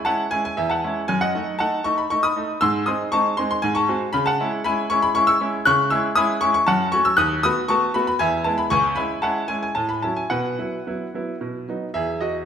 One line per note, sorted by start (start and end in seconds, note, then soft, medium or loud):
0.05 0.25 G#3 medium
0.05 0.25 C#4 medium
0.05 0.25 E4 medium
0.05 0.30 F#5 medium
0.05 0.21 A5 loud
0.31 0.50 G#3 medium
0.31 0.51 C#4 medium
0.31 0.51 E4 medium
0.31 0.44 G#5 loud
0.45 0.58 G#5 loud
0.57 0.83 E2 medium
0.57 0.71 E5 medium
0.70 1.07 F#5 medium
0.70 1.09 A5 medium
0.84 1.02 G#3 medium
0.84 1.02 C#4 medium
0.84 1.03 E4 medium
1.08 1.34 F#2 medium
1.08 1.22 G#5 loud
1.21 1.58 D#5 medium
1.21 1.56 F#5 medium
1.34 1.53 A3 medium
1.34 1.53 D#4 medium
1.59 1.79 A3 medium
1.59 1.79 D#4 medium
1.59 1.84 F#5 medium
1.59 1.85 A5 loud
1.84 2.04 A3 medium
1.84 2.04 D#4 medium
1.84 1.98 C#6 loud
1.98 2.11 B5 medium
2.10 2.30 A3 medium
2.10 2.30 D#4 medium
2.10 2.24 C#6 loud
2.23 2.60 B5 medium
2.23 2.62 D#6 loud
2.36 2.55 A3 medium
2.36 2.55 D#4 medium
2.61 2.87 G#2 medium
2.61 2.86 C6 loud
2.61 2.87 E6 loud
2.86 3.06 G#3 medium
2.86 3.06 C4 medium
2.86 3.06 D#4 medium
2.86 3.11 C6 medium
2.86 3.10 D#6 medium
3.12 3.31 G#3 medium
3.12 3.32 C4 medium
3.12 3.32 D#4 medium
3.12 3.37 A5 medium
3.12 3.35 C#6 loud
3.37 3.56 G#3 medium
3.37 3.57 C4 medium
3.37 3.57 D#4 medium
3.37 3.49 C6 loud
3.51 3.64 C6 loud
3.62 3.88 G#2 medium
3.62 3.76 G#5 loud
3.75 4.12 A5 medium
3.75 4.10 C#6 loud
3.88 4.07 G#3 medium
3.88 4.07 C4 medium
3.88 4.08 F#4 medium
4.13 4.39 C#3 loud
4.13 4.26 B5 loud
4.26 4.63 F#5 medium
4.26 4.49 A5 loud
4.40 4.58 G#3 medium
4.40 4.59 C#4 medium
4.40 4.59 E4 medium
4.64 4.83 G#3 medium
4.64 4.84 C#4 medium
4.64 4.84 E4 medium
4.64 4.89 G#5 medium
4.64 4.90 B5 loud
4.90 5.09 G#3 medium
4.90 5.09 C#4 medium
4.90 5.09 E4 medium
4.90 5.03 C#6 loud
5.02 5.15 B5 loud
5.15 5.34 G#3 medium
5.15 5.34 C#4 medium
5.15 5.34 E4 medium
5.15 5.27 C#6 loud
5.27 5.64 C#6 loud
5.27 5.50 E6 loud
5.41 5.59 G#3 medium
5.41 5.59 C#4 medium
5.41 5.59 E4 medium
5.65 5.91 C#3 loud
5.65 5.90 C#6 loud
5.65 5.91 F#6 loud
5.90 6.10 G#3 medium
5.90 6.10 C#4 medium
5.90 6.10 E4 medium
5.90 6.15 C#6 medium
5.90 6.06 E6 loud
6.15 6.35 G#3 medium
6.15 6.35 C#4 medium
6.15 6.35 E4 medium
6.15 6.40 B5 loud
6.15 6.39 D#6 loud
6.41 6.60 G#3 medium
6.41 6.60 C#4 medium
6.41 6.61 E4 medium
6.41 6.53 C#6 loud
6.54 6.67 C#6 loud
6.67 6.92 F#2 medium
6.67 6.91 F#5 medium
6.67 6.92 A5 loud
6.92 7.11 A3 medium
6.92 7.11 C#4 medium
6.92 7.12 F#4 medium
6.92 7.05 C#6 loud
7.05 7.18 E6 loud
7.17 7.43 D#2 medium
7.17 7.42 D#6 loud
7.17 7.43 F#6 loud
7.43 7.63 A3 medium
7.43 7.63 B3 medium
7.43 7.63 F#4 medium
7.43 7.68 B5 medium
7.43 7.67 D#6 loud
7.68 7.88 A3 medium
7.68 7.88 B3 medium
7.68 7.88 F#4 medium
7.68 7.94 A5 medium
7.68 7.92 C#6 loud
7.94 8.13 A3 medium
7.94 8.14 B3 medium
7.94 8.14 F#4 medium
7.94 8.06 B5 loud
8.07 8.20 B5 loud
8.19 8.45 E2 medium
8.19 8.44 E5 medium
8.19 8.43 G#5 loud
8.44 8.64 G#3 medium
8.44 8.64 B3 medium
8.44 8.65 E4 medium
8.44 8.58 A5 loud
8.58 8.71 B5 loud
8.70 8.96 C#2 medium
8.70 8.95 G#5 loud
8.70 8.94 C#6 loud
8.96 9.16 G#3 medium
8.96 9.16 C#4 medium
8.96 9.16 E4 medium
8.96 9.21 G#5 medium
8.96 9.22 B5 loud
9.22 9.42 G#3 medium
9.22 9.42 C#4 medium
9.22 9.42 E4 medium
9.22 9.47 F#5 medium
9.22 9.46 A5 loud
9.48 9.68 G#3 medium
9.48 9.68 C#4 medium
9.48 9.69 E4 medium
9.48 9.61 G#5 medium
9.63 9.76 G#5 medium
9.75 10.02 A2 medium
9.75 9.89 A5 loud
9.89 10.03 B5 medium
10.02 10.23 F#3 soft
10.02 10.23 C#4 soft
10.02 10.24 E4 medium
10.02 10.17 A5 medium
10.16 10.31 G#5 medium
10.30 10.57 B2 medium
10.30 11.37 B4 medium
10.30 11.40 F#5 medium
10.59 10.78 F#3 soft
10.59 10.79 B3 soft
10.59 10.79 E4 soft
10.87 11.06 F#3 soft
10.87 11.06 B3 soft
10.87 11.07 E4 medium
11.14 11.34 F#3 soft
11.14 11.34 B3 soft
11.14 11.34 E4 soft
11.41 11.67 B2 medium
11.68 11.88 F#3 soft
11.68 11.88 B3 soft
11.68 11.88 D#4 soft
11.94 12.45 E2 medium
11.94 12.20 G#4 medium
11.94 12.18 E5 medium
12.21 12.45 F#4 medium
12.21 12.37 D#5 medium